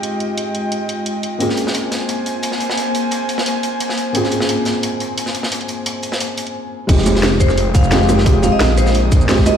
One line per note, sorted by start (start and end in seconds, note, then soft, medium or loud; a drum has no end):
0.00 1.36 G#3 medium
0.00 1.37 G#3 medium
0.00 1.38 C4 medium
0.00 1.38 D#4 medium
0.00 1.36 F4 medium
0.00 1.39 F4 medium
0.00 1.39 G4 medium
0.00 1.36 D#5 medium
0.00 1.36 G5 medium
0.00 closed hi-hat medium
0.20 closed hi-hat medium
0.38 closed hi-hat medium
0.55 closed hi-hat medium
0.72 closed hi-hat medium
0.89 closed hi-hat medium
1.06 closed hi-hat medium
1.23 closed hi-hat medium
1.38 4.11 A#3 medium
1.38 6.51 A#3 medium
1.38 4.12 C4 medium
1.38 4.13 C#4 medium
1.38 4.13 F4 medium
1.38 4.14 G#4 medium
1.38 6.51 C5 medium
1.38 6.51 G#5 medium
1.38 closed hi-hat medium
1.49 snare soft
1.57 closed hi-hat medium
1.67 snare soft
1.74 closed hi-hat medium
1.92 snare soft
1.92 closed hi-hat medium
2.09 closed hi-hat medium
2.26 closed hi-hat medium
2.43 closed hi-hat medium
2.52 snare soft
2.60 closed hi-hat medium
2.70 snare soft
2.78 closed hi-hat medium
2.95 closed hi-hat medium
3.11 closed hi-hat medium
3.29 closed hi-hat medium
3.38 snare medium
3.46 closed hi-hat medium
3.63 closed hi-hat medium
3.80 closed hi-hat medium
3.89 snare soft
3.98 closed hi-hat medium
4.13 6.54 A#3 medium
4.13 6.54 C4 medium
4.13 6.55 C#4 medium
4.13 6.55 F4 medium
4.13 6.56 G#4 medium
4.13 closed hi-hat medium
4.24 snare soft
4.31 closed hi-hat medium
4.40 snare medium
4.49 closed hi-hat medium
4.65 snare soft
4.65 closed hi-hat medium
4.83 closed hi-hat medium
5.00 closed hi-hat medium
5.18 closed hi-hat medium
5.26 snare soft
5.35 closed hi-hat medium
5.43 snare soft
5.52 closed hi-hat medium
5.61 closed hi-hat soft
5.68 closed hi-hat medium
5.86 closed hi-hat medium
6.03 closed hi-hat medium
6.12 snare medium
6.20 closed hi-hat loud
6.20 closed hi-hat medium
6.37 closed hi-hat medium
6.47 closed hi-hat soft
6.87 8.51 F1 loud
6.87 7.72 G#3 medium
6.87 9.57 G#3 medium
6.87 7.72 C4 medium
6.87 7.73 D#4 medium
6.87 7.73 F4 medium
6.87 7.74 G4 loud
6.87 9.57 G5 medium
6.87 9.57 D#6 medium
6.87 kick loud
6.87 closed hi-hat medium
6.87 crash loud
6.98 snare soft
7.06 closed hi-hat medium
7.06 high bongo medium
7.06 shaker medium
7.15 snare medium
7.23 snare loud
7.23 closed hi-hat loud
7.23 closed hi-hat medium
7.40 7.66 C5 medium
7.40 kick medium
7.40 closed hi-hat medium
7.40 shaker medium
7.49 snare soft
7.49 high bongo soft
7.49 shaker soft
7.58 closed hi-hat loud
7.58 closed hi-hat medium
7.75 8.09 F5 medium
7.75 kick loud
7.75 closed hi-hat medium
7.75 shaker medium
7.84 shaker soft
7.91 8.07 G#3 loud
7.91 8.07 C4 medium
7.91 8.07 D#4 medium
7.91 8.07 F4 medium
7.91 8.08 G4 loud
7.91 snare loud
7.91 closed hi-hat medium
7.91 closed hi-hat loud
8.01 cross-stick soft
8.01 snare soft
8.08 8.23 G#3 medium
8.08 8.24 C4 medium
8.08 8.24 D#4 medium
8.08 8.24 F4 medium
8.08 8.25 A#4 medium
8.08 cross-stick soft
8.08 closed hi-hat medium
8.08 high bongo medium
8.08 shaker medium
8.18 snare soft
8.24 9.09 G#3 medium
8.24 9.09 C4 medium
8.24 9.10 D#4 medium
8.24 9.10 F4 medium
8.24 9.11 G4 loud
8.24 kick loud
8.24 closed hi-hat medium
8.24 closed hi-hat loud
8.43 8.50 F5 medium
8.43 closed hi-hat medium
8.43 high bongo medium
8.43 shaker medium
8.52 8.73 D#5 medium
8.60 9.28 A#1 loud
8.60 snare loud
8.60 closed hi-hat medium
8.77 8.98 C5 loud
8.77 cross-stick medium
8.77 closed hi-hat medium
8.77 open hi-hat medium
8.77 shaker medium
8.86 snare medium
8.86 shaker soft
8.95 closed hi-hat medium
9.12 kick loud
9.12 closed hi-hat medium
9.12 shaker medium
9.21 shaker soft
9.28 9.44 G#3 loud
9.28 9.44 C4 medium
9.28 9.44 D#4 medium
9.28 9.44 F4 medium
9.28 9.45 G4 loud
9.28 snare loud
9.28 closed hi-hat medium
9.38 kick medium
9.38 snare soft
9.45 9.57 G#3 medium
9.45 9.57 C4 medium
9.45 9.57 D#4 medium
9.45 9.57 F4 medium
9.45 9.57 A#4 medium
9.45 9.57 D#5 medium
9.45 cross-stick medium
9.45 closed hi-hat medium
9.45 high bongo medium
9.45 shaker medium